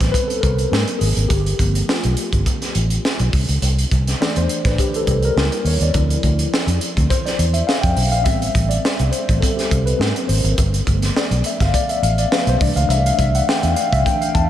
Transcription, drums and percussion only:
0.01 kick, snare, closed hi-hat
0.14 kick, closed hi-hat
0.30 closed hi-hat
0.43 kick, closed hi-hat
0.58 closed hi-hat
0.73 snare
0.87 closed hi-hat
1.01 open hi-hat
1.17 closed hi-hat
1.30 kick, closed hi-hat
1.46 closed hi-hat
1.59 kick, closed hi-hat
1.75 closed hi-hat
1.89 snare
2.03 closed hi-hat
2.17 closed hi-hat
2.33 kick, closed hi-hat
2.46 kick, closed hi-hat
2.62 snare, closed hi-hat
2.75 closed hi-hat
2.90 closed hi-hat
3.05 snare
3.19 closed hi-hat
3.33 kick, open hi-hat
3.49 closed hi-hat
3.62 closed hi-hat
3.79 closed hi-hat
3.91 kick, closed hi-hat
4.07 snare, closed hi-hat
4.22 snare
4.36 closed hi-hat
4.49 closed hi-hat
4.65 kick, snare, closed hi-hat
4.78 kick, closed hi-hat
4.94 closed hi-hat
5.07 kick, closed hi-hat
5.23 closed hi-hat
5.38 snare
5.52 closed hi-hat
5.66 open hi-hat
5.81 closed hi-hat
5.94 kick, closed hi-hat
6.10 closed hi-hat
6.23 kick, closed hi-hat
6.39 closed hi-hat
6.54 snare
6.68 closed hi-hat
6.81 closed hi-hat
6.97 kick, closed hi-hat
7.10 kick, closed hi-hat
7.26 snare, closed hi-hat
7.39 closed hi-hat
7.54 closed hi-hat
7.69 snare
7.83 kick, closed hi-hat
7.97 open hi-hat
8.12 closed hi-hat
8.26 kick, closed hi-hat
8.42 closed hi-hat
8.55 kick, closed hi-hat
8.71 closed hi-hat
8.85 snare
8.99 closed hi-hat
9.13 closed hi-hat
9.29 kick, closed hi-hat
9.42 kick, closed hi-hat
9.59 snare, closed hi-hat
9.71 kick, closed hi-hat
9.87 closed hi-hat
10.01 snare
10.16 closed hi-hat
10.29 open hi-hat
10.44 closed hi-hat
10.58 kick, closed hi-hat
10.74 closed hi-hat
10.87 kick, closed hi-hat
11.02 snare, closed hi-hat
11.16 snare
11.31 closed hi-hat
11.44 closed hi-hat
11.60 kick, snare, closed hi-hat
11.74 kick, closed hi-hat
11.89 closed hi-hat
12.03 closed hi-hat
12.18 closed hi-hat
12.32 snare
12.47 closed hi-hat
12.61 kick, open hi-hat
12.77 closed hi-hat
12.90 closed hi-hat
13.06 closed hi-hat
13.19 kick, closed hi-hat
13.35 closed hi-hat
13.49 snare
13.63 closed hi-hat
13.76 closed hi-hat
13.93 kick, closed hi-hat
14.06 kick, closed hi-hat
14.22 closed hi-hat
14.35 kick, closed hi-hat

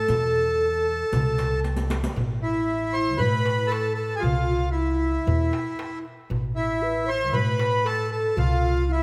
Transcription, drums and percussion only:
0.08 riq, darbuka dum
0.34 riq, darbuka ka
0.88 darbuka ka
1.13 riq, darbuka dum
1.26 riq, darbuka ka
1.38 riq, darbuka tek
1.53 darbuka ka
1.64 riq, darbuka tek
1.76 riq, darbuka ka
1.90 riq, darbuka tek
2.04 riq, darbuka ka
2.17 darbuka dum
2.30 darbuka ka
2.43 darbuka ka
2.68 darbuka ka
3.20 darbuka dum
3.45 darbuka tek
3.59 darbuka ka
3.72 darbuka tek
3.98 darbuka ka
4.24 darbuka dum
4.51 darbuka ka
4.76 darbuka ka
5.28 darbuka dum
5.53 darbuka tek
5.66 darbuka ka
5.79 darbuka tek
6.05 darbuka ka
6.31 darbuka dum
6.45 darbuka ka
6.57 darbuka ka
6.83 darbuka ka
7.33 darbuka dum
7.59 darbuka tek
7.73 darbuka ka
7.86 darbuka tek
8.12 darbuka ka
8.38 darbuka dum
8.63 darbuka ka
8.90 darbuka ka

